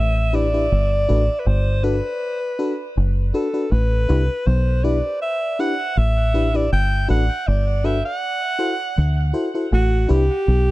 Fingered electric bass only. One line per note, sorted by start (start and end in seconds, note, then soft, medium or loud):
0.00 0.67 A1 medium
0.72 1.05 G1 medium
1.10 1.28 A1 medium
1.47 2.00 G1 loud
2.97 3.31 F#1 medium
3.72 4.06 A1 loud
4.10 4.28 C2 medium
4.47 5.00 B1 loud
5.97 6.68 A1 medium
6.72 7.06 G1 medium
7.10 7.28 A1 medium
7.48 8.01 G1 medium
8.98 9.32 D2 loud
9.72 10.06 A1 loud
10.10 10.28 C2 medium
10.48 10.71 B1 loud